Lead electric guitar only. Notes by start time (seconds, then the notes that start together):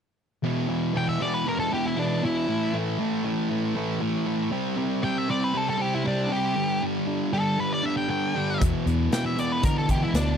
0.97 G5
1.09 E5
1.22 D5
1.34 B4
1.49 A#4
1.60 A4
1.74 G4
1.86 E4
1.99 D4
2.25 E4
5.04 G5
5.18 E5
5.30 D5
5.44 B4
5.57 A4
5.70 A4
5.81 G4
5.95 E4
6.08 D4
6.32 G4
7.33 A4
7.60 B4
7.73 D5
7.86 E5
7.97 G5
8.10 G5
9.13 G5
9.26 E5
9.39 D5
9.52 B4
9.65 A#4
9.78 A4
9.91 G4
10.03 E4
10.16 D4